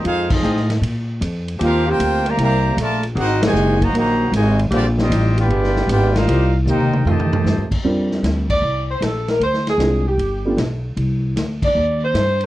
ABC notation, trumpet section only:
X:1
M:4/4
L:1/8
Q:"Swing" 1/4=154
K:Bb
V:1 name="Trumpet section"
[E_Acf] [CFAe]2 z4 z | [CGBf] [FBcg]2 [Gcfb] [Gcfb]2 [FBda] z | [EBc_g] [_Gce_a]2 [Gceb] [Gceb]2 [Gcea] z | [CFGd] [CFGe]2 [F_cdg]3 [F=Bdg] [E_B=cf]- |
[EBcf] z [EBcg]2 [Gcea]3 z | z8 | z8 | z8 |]